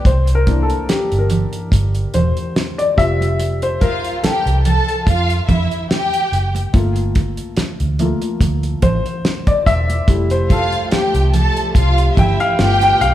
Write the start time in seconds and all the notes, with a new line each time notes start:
0.05 C2 C5, kick, closed hi-hat, muted conga
0.27 closed hi-hat
0.35 A#4
0.47 E3 A#3 D4, kick, closed hi-hat, muted conga
0.63 A4
0.70 closed hi-hat
0.89 G4, muted fingered electric bass stroke, snare, closed hi-hat, high conga
1.12 G1, closed hi-hat
1.19 A#4
1.30 closed hi-hat, low conga
1.53 closed hi-hat
1.72 G1, kick, closed hi-hat, muted conga
1.95 closed hi-hat
2.14 E1 C5, closed hi-hat, muted conga, low conga
2.37 closed hi-hat
2.56 snare, closed hi-hat, high conga
2.78 D5, closed hi-hat
2.97 F1 G3 C4 F4 E5, kick, closed hi-hat
3.21 closed hi-hat, high conga
3.40 closed hi-hat, muted conga
3.62 C5, closed hi-hat
3.81 F4 A#4 F5, kick, closed hi-hat, muted conga
4.04 closed hi-hat
4.23 G4 A4 G5, muted fingered electric bass stroke, snare, closed hi-hat, high conga
4.46 C2, closed hi-hat
4.64 A4 A5, closed hi-hat, low conga
4.89 closed hi-hat
5.06 F2 F4 F5, kick, closed hi-hat
5.30 closed hi-hat
5.47 F2 E4 E5, kick, closed hi-hat, muted conga, low conga
5.71 closed hi-hat
5.90 G4 G5, snare, closed hi-hat, high conga
6.14 closed hi-hat
6.32 F#1, closed hi-hat
6.55 closed hi-hat, high conga
6.73 G1 A3 A#3 F4, kick, closed hi-hat, muted conga
6.96 closed hi-hat
7.15 kick, closed hi-hat, muted conga
7.37 closed hi-hat
7.57 muted fingered electric bass stroke, snare, closed hi-hat, high conga
7.80 D2, closed hi-hat
7.99 A3 A#3 F4, closed hi-hat, low conga
8.22 closed hi-hat
8.41 D2, kick, closed hi-hat, low conga
8.63 closed hi-hat
8.82 A1 C5, kick, closed hi-hat, muted conga, low conga
9.06 closed hi-hat
9.25 snare, closed hi-hat, high conga
9.47 D5, kick, closed hi-hat
9.66 E1 E5, kick, closed hi-hat
9.89 closed hi-hat, high conga
10.07 F1 F3 G3 A3 E4 G4, kick, closed hi-hat, muted conga
10.30 C5, closed hi-hat
10.50 F4 A4 F5, kick, closed hi-hat, muted conga
10.72 closed hi-hat
10.91 G4 G5, muted fingered electric bass stroke, snare, closed hi-hat, high conga
11.14 C2, closed hi-hat
11.33 A4 A5, closed hi-hat, low conga
11.57 closed hi-hat
11.75 C2 F4 F5, kick, closed hi-hat
11.98 closed hi-hat
12.16 G1 E4 E5 G5, kick, closed hi-hat, muted conga, low conga
12.40 F5, closed hi-hat
12.58 G1 D3 A3 B3 F4 G4 G5, snare, closed hi-hat, high conga
12.81 G5, snare, closed hi-hat
13.01 B1 F5, closed hi-hat